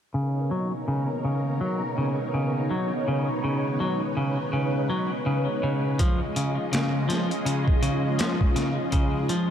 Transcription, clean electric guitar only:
0, 0, Header, 1, 2, 480
1, 0, Start_track
1, 0, Tempo, 731707
1, 96, Time_signature, 4, 2, 24, 8
1, 6235, End_track
2, 0, Start_track
2, 0, Title_t, "Clean electric guitar"
2, 0, Program_c, 0, 27
2, 93, Note_on_c, 0, 49, 68
2, 325, Note_off_c, 0, 49, 0
2, 335, Note_on_c, 0, 54, 80
2, 470, Note_off_c, 0, 54, 0
2, 576, Note_on_c, 0, 49, 72
2, 710, Note_off_c, 0, 49, 0
2, 817, Note_on_c, 0, 49, 64
2, 1047, Note_off_c, 0, 49, 0
2, 1056, Note_on_c, 0, 54, 86
2, 1190, Note_off_c, 0, 54, 0
2, 1298, Note_on_c, 0, 49, 66
2, 1431, Note_off_c, 0, 49, 0
2, 1534, Note_on_c, 0, 49, 70
2, 1765, Note_off_c, 0, 49, 0
2, 1776, Note_on_c, 0, 54, 89
2, 1910, Note_off_c, 0, 54, 0
2, 2019, Note_on_c, 0, 49, 70
2, 2152, Note_off_c, 0, 49, 0
2, 2256, Note_on_c, 0, 49, 66
2, 2486, Note_off_c, 0, 49, 0
2, 2494, Note_on_c, 0, 54, 86
2, 2630, Note_off_c, 0, 54, 0
2, 2734, Note_on_c, 0, 49, 69
2, 2869, Note_off_c, 0, 49, 0
2, 2972, Note_on_c, 0, 49, 72
2, 3204, Note_off_c, 0, 49, 0
2, 3212, Note_on_c, 0, 54, 90
2, 3348, Note_off_c, 0, 54, 0
2, 3452, Note_on_c, 0, 49, 74
2, 3588, Note_off_c, 0, 49, 0
2, 3695, Note_on_c, 0, 49, 72
2, 3926, Note_off_c, 0, 49, 0
2, 3932, Note_on_c, 0, 53, 92
2, 4068, Note_off_c, 0, 53, 0
2, 4173, Note_on_c, 0, 49, 68
2, 4309, Note_off_c, 0, 49, 0
2, 4414, Note_on_c, 0, 49, 74
2, 4645, Note_off_c, 0, 49, 0
2, 4649, Note_on_c, 0, 53, 101
2, 4787, Note_off_c, 0, 53, 0
2, 4890, Note_on_c, 0, 49, 70
2, 5027, Note_off_c, 0, 49, 0
2, 5133, Note_on_c, 0, 49, 68
2, 5365, Note_off_c, 0, 49, 0
2, 5374, Note_on_c, 0, 53, 97
2, 5509, Note_off_c, 0, 53, 0
2, 5614, Note_on_c, 0, 49, 76
2, 5749, Note_off_c, 0, 49, 0
2, 5853, Note_on_c, 0, 49, 76
2, 6084, Note_off_c, 0, 49, 0
2, 6097, Note_on_c, 0, 53, 89
2, 6231, Note_off_c, 0, 53, 0
2, 6235, End_track
0, 0, End_of_file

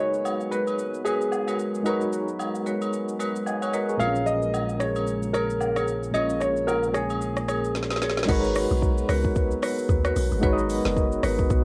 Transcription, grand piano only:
0, 0, Header, 1, 2, 480
1, 0, Start_track
1, 0, Tempo, 535714
1, 1666, Time_signature, 4, 2, 24, 8
1, 10429, End_track
2, 0, Start_track
2, 0, Title_t, "Grand piano"
2, 0, Program_c, 0, 0
2, 0, Note_on_c, 0, 73, 96
2, 458, Note_on_c, 0, 71, 90
2, 476, Note_off_c, 0, 73, 0
2, 908, Note_off_c, 0, 71, 0
2, 937, Note_on_c, 0, 68, 91
2, 1388, Note_off_c, 0, 68, 0
2, 3580, Note_on_c, 0, 77, 103
2, 3818, Note_on_c, 0, 75, 119
2, 3830, Note_off_c, 0, 77, 0
2, 4297, Note_on_c, 0, 73, 91
2, 4317, Note_off_c, 0, 75, 0
2, 4778, Note_on_c, 0, 70, 90
2, 4796, Note_off_c, 0, 73, 0
2, 5228, Note_off_c, 0, 70, 0
2, 5499, Note_on_c, 0, 75, 109
2, 5725, Note_off_c, 0, 75, 0
2, 5736, Note_on_c, 0, 73, 97
2, 5976, Note_on_c, 0, 70, 93
2, 5989, Note_off_c, 0, 73, 0
2, 6151, Note_off_c, 0, 70, 0
2, 6165, Note_on_c, 0, 70, 59
2, 6214, Note_on_c, 0, 68, 89
2, 6222, Note_off_c, 0, 70, 0
2, 6904, Note_off_c, 0, 68, 0
2, 10429, End_track
0, 0, End_of_file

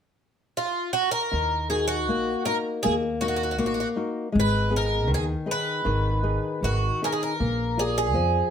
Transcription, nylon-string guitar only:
0, 0, Header, 1, 2, 480
1, 0, Start_track
1, 0, Key_signature, -6, "minor"
1, 0, Tempo, 758534
1, 838, Time_signature, 2, 2, 24, 8
1, 5380, End_track
2, 0, Start_track
2, 0, Title_t, "Nylon-string guitar"
2, 0, Program_c, 0, 24
2, 832, Note_on_c, 0, 51, 50
2, 1075, Note_on_c, 0, 63, 40
2, 1078, Note_on_c, 0, 66, 35
2, 1079, Note_on_c, 0, 70, 39
2, 1304, Note_off_c, 0, 51, 0
2, 1320, Note_on_c, 0, 58, 56
2, 1462, Note_off_c, 0, 63, 0
2, 1463, Note_off_c, 0, 66, 0
2, 1465, Note_off_c, 0, 70, 0
2, 1555, Note_on_c, 0, 63, 37
2, 1560, Note_on_c, 0, 66, 35
2, 1560, Note_on_c, 0, 70, 39
2, 1785, Note_off_c, 0, 58, 0
2, 1801, Note_on_c, 0, 58, 54
2, 1938, Note_off_c, 0, 63, 0
2, 1941, Note_off_c, 0, 66, 0
2, 1941, Note_off_c, 0, 70, 0
2, 2035, Note_on_c, 0, 63, 36
2, 2038, Note_on_c, 0, 66, 40
2, 2041, Note_on_c, 0, 70, 47
2, 2259, Note_off_c, 0, 58, 0
2, 2268, Note_on_c, 0, 58, 57
2, 2414, Note_off_c, 0, 66, 0
2, 2415, Note_off_c, 0, 63, 0
2, 2417, Note_off_c, 0, 70, 0
2, 2506, Note_on_c, 0, 63, 42
2, 2510, Note_on_c, 0, 66, 36
2, 2513, Note_on_c, 0, 70, 41
2, 2699, Note_off_c, 0, 63, 0
2, 2701, Note_off_c, 0, 66, 0
2, 2703, Note_off_c, 0, 70, 0
2, 2732, Note_off_c, 0, 58, 0
2, 2736, Note_on_c, 0, 56, 57
2, 2973, Note_on_c, 0, 63, 45
2, 2977, Note_on_c, 0, 59, 52
2, 2981, Note_on_c, 0, 68, 42
2, 3206, Note_off_c, 0, 56, 0
2, 3211, Note_on_c, 0, 51, 58
2, 3359, Note_off_c, 0, 63, 0
2, 3363, Note_off_c, 0, 59, 0
2, 3363, Note_off_c, 0, 68, 0
2, 3455, Note_on_c, 0, 63, 40
2, 3458, Note_on_c, 0, 68, 37
2, 3462, Note_on_c, 0, 71, 50
2, 3683, Note_off_c, 0, 51, 0
2, 3701, Note_on_c, 0, 51, 56
2, 3849, Note_off_c, 0, 63, 0
2, 3849, Note_off_c, 0, 68, 0
2, 3849, Note_off_c, 0, 71, 0
2, 3944, Note_on_c, 0, 63, 37
2, 3944, Note_on_c, 0, 68, 34
2, 3948, Note_on_c, 0, 71, 46
2, 4179, Note_off_c, 0, 51, 0
2, 4199, Note_on_c, 0, 51, 52
2, 4339, Note_off_c, 0, 68, 0
2, 4340, Note_off_c, 0, 63, 0
2, 4341, Note_off_c, 0, 71, 0
2, 4442, Note_on_c, 0, 63, 37
2, 4447, Note_on_c, 0, 68, 33
2, 4447, Note_on_c, 0, 71, 40
2, 4636, Note_off_c, 0, 63, 0
2, 4637, Note_off_c, 0, 68, 0
2, 4639, Note_off_c, 0, 71, 0
2, 4670, Note_off_c, 0, 51, 0
2, 4683, Note_on_c, 0, 58, 50
2, 4919, Note_on_c, 0, 65, 39
2, 4923, Note_on_c, 0, 70, 34
2, 4926, Note_on_c, 0, 74, 42
2, 5148, Note_off_c, 0, 58, 0
2, 5152, Note_on_c, 0, 53, 51
2, 5302, Note_off_c, 0, 65, 0
2, 5304, Note_off_c, 0, 70, 0
2, 5305, Note_off_c, 0, 74, 0
2, 5380, Note_off_c, 0, 53, 0
2, 5380, End_track
0, 0, End_of_file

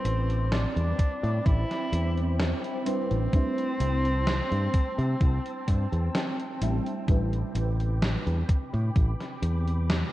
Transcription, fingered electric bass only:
0, 0, Header, 1, 2, 480
1, 0, Start_track
1, 0, Key_signature, 0, "minor"
1, 0, Tempo, 937500
1, 1705, Time_signature, 4, 2, 24, 8
1, 5184, End_track
2, 0, Start_track
2, 0, Title_t, "Fingered electric bass"
2, 0, Program_c, 0, 33
2, 23, Note_on_c, 0, 33, 81
2, 330, Note_off_c, 0, 33, 0
2, 390, Note_on_c, 0, 40, 96
2, 470, Note_off_c, 0, 40, 0
2, 630, Note_on_c, 0, 45, 99
2, 710, Note_off_c, 0, 45, 0
2, 746, Note_on_c, 0, 33, 87
2, 834, Note_off_c, 0, 33, 0
2, 984, Note_on_c, 0, 40, 87
2, 1290, Note_off_c, 0, 40, 0
2, 1593, Note_on_c, 0, 33, 89
2, 1672, Note_off_c, 0, 33, 0
2, 1945, Note_on_c, 0, 36, 80
2, 2250, Note_off_c, 0, 36, 0
2, 2311, Note_on_c, 0, 43, 97
2, 2391, Note_off_c, 0, 43, 0
2, 2551, Note_on_c, 0, 48, 99
2, 2631, Note_off_c, 0, 48, 0
2, 2666, Note_on_c, 0, 36, 103
2, 2754, Note_off_c, 0, 36, 0
2, 2907, Note_on_c, 0, 43, 85
2, 2994, Note_off_c, 0, 43, 0
2, 3031, Note_on_c, 0, 40, 96
2, 3111, Note_off_c, 0, 40, 0
2, 3386, Note_on_c, 0, 33, 84
2, 3474, Note_off_c, 0, 33, 0
2, 3627, Note_on_c, 0, 33, 97
2, 3797, Note_off_c, 0, 33, 0
2, 3865, Note_on_c, 0, 33, 85
2, 4170, Note_off_c, 0, 33, 0
2, 4232, Note_on_c, 0, 40, 98
2, 4311, Note_off_c, 0, 40, 0
2, 4473, Note_on_c, 0, 45, 101
2, 4551, Note_off_c, 0, 45, 0
2, 4587, Note_on_c, 0, 33, 91
2, 4674, Note_off_c, 0, 33, 0
2, 4825, Note_on_c, 0, 40, 86
2, 5130, Note_off_c, 0, 40, 0
2, 5184, End_track
0, 0, End_of_file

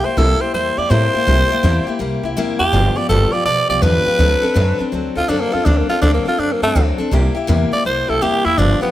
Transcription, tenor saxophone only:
0, 0, Header, 1, 2, 480
1, 0, Start_track
1, 0, Tempo, 365631
1, 1666, Time_signature, 4, 2, 24, 8
1, 11697, End_track
2, 0, Start_track
2, 0, Title_t, "Tenor saxophone"
2, 0, Program_c, 0, 66
2, 64, Note_on_c, 0, 72, 84
2, 235, Note_on_c, 0, 69, 96
2, 254, Note_off_c, 0, 72, 0
2, 541, Note_on_c, 0, 72, 85
2, 560, Note_off_c, 0, 69, 0
2, 703, Note_off_c, 0, 72, 0
2, 714, Note_on_c, 0, 72, 94
2, 1023, Note_on_c, 0, 74, 91
2, 1043, Note_off_c, 0, 72, 0
2, 1187, Note_on_c, 0, 72, 111
2, 1206, Note_off_c, 0, 74, 0
2, 2584, Note_off_c, 0, 72, 0
2, 3406, Note_on_c, 0, 67, 110
2, 3899, Note_on_c, 0, 74, 92
2, 3919, Note_off_c, 0, 67, 0
2, 4051, Note_off_c, 0, 74, 0
2, 4059, Note_on_c, 0, 69, 98
2, 4366, Note_on_c, 0, 74, 100
2, 4386, Note_off_c, 0, 69, 0
2, 4526, Note_off_c, 0, 74, 0
2, 4534, Note_on_c, 0, 74, 107
2, 4842, Note_off_c, 0, 74, 0
2, 4854, Note_on_c, 0, 74, 94
2, 5016, Note_on_c, 0, 71, 112
2, 5036, Note_off_c, 0, 74, 0
2, 6419, Note_off_c, 0, 71, 0
2, 6790, Note_on_c, 0, 65, 94
2, 6944, Note_on_c, 0, 62, 87
2, 6964, Note_off_c, 0, 65, 0
2, 7097, Note_on_c, 0, 58, 100
2, 7117, Note_off_c, 0, 62, 0
2, 7269, Note_on_c, 0, 65, 86
2, 7289, Note_off_c, 0, 58, 0
2, 7420, Note_on_c, 0, 62, 95
2, 7439, Note_off_c, 0, 65, 0
2, 7582, Note_on_c, 0, 58, 82
2, 7602, Note_off_c, 0, 62, 0
2, 7728, Note_off_c, 0, 58, 0
2, 7736, Note_on_c, 0, 65, 90
2, 7891, Note_off_c, 0, 65, 0
2, 7899, Note_on_c, 0, 62, 99
2, 8051, Note_off_c, 0, 62, 0
2, 8059, Note_on_c, 0, 58, 96
2, 8219, Note_off_c, 0, 58, 0
2, 8247, Note_on_c, 0, 65, 97
2, 8392, Note_on_c, 0, 62, 95
2, 8412, Note_off_c, 0, 65, 0
2, 8562, Note_on_c, 0, 58, 92
2, 8582, Note_off_c, 0, 62, 0
2, 8698, Note_off_c, 0, 58, 0
2, 8705, Note_on_c, 0, 57, 100
2, 8962, Note_off_c, 0, 57, 0
2, 10146, Note_on_c, 0, 74, 97
2, 10307, Note_off_c, 0, 74, 0
2, 10318, Note_on_c, 0, 72, 96
2, 10623, Note_on_c, 0, 69, 94
2, 10643, Note_off_c, 0, 72, 0
2, 10789, Note_on_c, 0, 67, 97
2, 10809, Note_off_c, 0, 69, 0
2, 11096, Note_on_c, 0, 64, 104
2, 11116, Note_off_c, 0, 67, 0
2, 11262, Note_on_c, 0, 62, 99
2, 11281, Note_off_c, 0, 64, 0
2, 11567, Note_off_c, 0, 62, 0
2, 11579, Note_on_c, 0, 59, 94
2, 11697, Note_off_c, 0, 59, 0
2, 11697, End_track
0, 0, End_of_file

